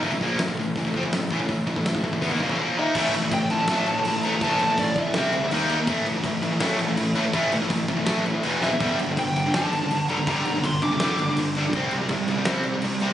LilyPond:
<<
  \new Staff \with { instrumentName = "Lead electric guitar" } { \time 4/4 \key a \phrygian \tempo 4 = 164 r1 | r2. r8 e''8~ | e''8 r8 g''8 a''2 bes''8 | a''4 d''8 e''4. r4 |
r1 | r2. r8 e''8~ | e''8 r8 g''4 a''4. bes''8 | bes''4 c'''8 d'''4. r4 |
r1 | }
  \new Staff \with { instrumentName = "Distorted electric guitar" } { \clef bass \time 4/4 \key a \phrygian <a, e>16 <a, e>16 <bes, f bes>8 <a, e>16 <a, e>16 <a, e>8 <a, e>16 <a, e>16 <f c'>16 <a, e>16 <a, e>8 <a, e>16 <a, e>16 | <a, e>8 <a, e>16 <a, e>16 <a, e>16 <a, e>16 <a, e>16 <a, e>16 <e b>16 <dis bes>16 <bes, f>16 <a, e>16 <bes, f bes>8 <dis bes dis'>8 | <a, e a>8 <a, e>16 <a, e>16 <a, e>8 <a, e>16 <a, e>16 <a, e a>8 <a, e>16 <a, e>16 <a, e>8 <a, e a>16 <a, e>16 | <a, e a>8 <a, e>16 <a, e>16 <a, e>8 <a, e>16 <a, e>16 <c g c'>8 <c g>16 <c g>16 <dis ais dis'>8 <dis ais dis'>16 <dis ais>16 |
<a, e a>8 <a, e>16 <a, e>16 <a, e>8 <a, e>16 <a, e>16 <a, e a>8 <a, e>16 <a, e>16 <a, e>8 <a, e a>16 <a, e>16 | <a, e a>8 <a, e>16 <a, e>16 <a, e>8 <a, e>16 <a, e>16 <a, e a>8 <a, e>16 <a, e>16 <e, b, e>8 <e, b, e>16 <e, b,>16 | <g, d g>8 <g, d>16 <g, d>16 <g, d>8 <g, d>16 <g, d>16 <g, d g>8 <g, d>16 <g, d>16 <g, d>8 <g, d g>16 <g, d>16 | <g, d g>8 <g, d>16 <g, d>16 <g, d>8 <g, d>16 <g, d>16 <g, d g>8 <g, d>16 <g, d>16 <g, d>8 <g, d g>16 <g, d>16 |
<c g c'>8 <c g>16 <c g>16 <c g>8 <c g>16 <c g>16 <c g c'>8 <c g>16 <c g>16 <c g>8 <c g c'>16 r16 | }
  \new Staff \with { instrumentName = "Picked electric bass" } { \clef bass \time 4/4 \key a \phrygian a,,16 a,,16 bes,,8 a,,16 a,,16 a,,8 a,,16 a,,16 f,16 a,,16 a,,8 a,,16 a,,16 | a,,8 a,,16 a,,16 a,,16 a,,16 a,,16 a,,16 e,16 dis,16 bes,,16 a,,16 r4 | a,,8 a,,8 a,,8 a,,8 a,,8 a,,8 a,,4 | a,,8 a,,8 a,,8 a,,8 c,8 d,8 dis,4 |
a,,8 a,,8 a,,8 a,,8 a,,8 a,,8 a,,4 | a,,8 a,,8 a,,8 a,,8 a,,8 a,,8 e,,4 | g,,8 g,,8 g,,8 g,,8 g,,8 g,,8 g,,4 | g,,8 g,,8 g,,8 g,,8 g,,8 g,,8 g,,4 |
c,8 c,8 c,8 c,8 c,8 c,8 c,4 | }
  \new DrumStaff \with { instrumentName = "Drums" } \drummode { \time 4/4 <hho bd>16 bd16 bd8 <hho sn>16 bd16 bd8 <hho bd>16 bd16 bd16 bd16 <hho sn>8 bd16 bd16 | <hho bd>8 bd16 bd16 <hho sn>16 bd16 bd16 bd16 <hho bd>16 bd16 bd16 bd16 r4 | <cymc bd>8 cymc8 <cymc bd>8 cymc8 <cymc sn>8 cymc8 cymc8 cymc8 | <cymc bd>8 cymc8 <cymc bd>8 <cymc bd>8 <cymc sn>8 cymc8 cymc8 cymc8 |
<cymc bd>8 cymc8 <cymc bd>8 cymc8 <cymc sn>8 cymc8 cymc8 cymc8 | <cymc bd>8 cymc8 <cymc bd>8 <cymc bd>8 <cymc sn>8 cymc8 cymc8 sn8 | <cymc bd>8 cymc8 <cymc bd>8 cymc8 <cymc sn>8 cymc8 cymc8 cymc8 | <cymc bd>8 cymc8 <cymc bd>8 <cymc bd>8 <cymc sn>8 cymc8 cymc8 cymc8 |
<cymc bd>8 cymc8 <cymc bd>8 cymc8 <cymc sn>8 cymc8 cymc8 cymc8 | }
>>